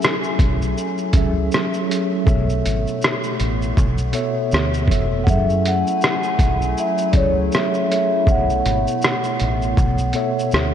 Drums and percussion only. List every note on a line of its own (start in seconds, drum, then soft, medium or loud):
0.02 cross-stick loud
0.02 shaker medium
0.24 shaker soft
0.39 kick loud
0.39 closed hi-hat medium
0.39 shaker soft
0.62 shaker soft
0.78 shaker medium
0.98 shaker medium
1.13 kick loud
1.13 closed hi-hat medium
1.13 shaker medium
1.52 cross-stick medium
1.52 shaker medium
1.74 shaker soft
1.91 closed hi-hat medium
1.91 shaker medium
2.27 kick loud
2.27 shaker medium
2.50 shaker soft
2.66 closed hi-hat medium
2.66 shaker medium
2.87 shaker soft
3.02 cross-stick loud
3.02 shaker medium
3.24 shaker soft
3.40 closed hi-hat medium
3.40 shaker soft
3.62 shaker soft
3.77 kick medium
3.77 shaker medium
3.98 shaker medium
4.13 closed hi-hat medium
4.13 shaker medium
4.52 cross-stick loud
4.52 shaker medium
4.74 shaker soft
4.88 kick medium
4.88 closed hi-hat medium
4.88 shaker medium
5.27 kick loud
5.27 shaker medium
5.50 shaker soft
5.65 closed hi-hat medium
5.65 shaker medium
5.87 shaker medium
6.01 cross-stick loud
6.01 shaker medium
6.23 shaker soft
6.39 kick medium
6.39 closed hi-hat medium
6.39 shaker soft
6.62 shaker soft
6.78 shaker medium
6.98 shaker medium
7.13 kick medium
7.13 closed hi-hat medium
7.13 shaker soft
7.52 cross-stick loud
7.52 shaker medium
7.74 shaker soft
7.92 closed hi-hat medium
7.92 shaker medium
8.27 kick loud
8.27 shaker medium
8.50 shaker soft
8.66 closed hi-hat medium
8.66 shaker medium
8.87 shaker medium
9.02 cross-stick loud
9.02 shaker medium
9.24 shaker medium
9.39 closed hi-hat medium
9.39 shaker soft
9.62 shaker soft
9.77 kick medium
9.77 shaker medium
9.98 shaker medium
10.13 closed hi-hat medium
10.13 shaker medium
10.39 shaker medium
10.52 cross-stick loud
10.52 shaker medium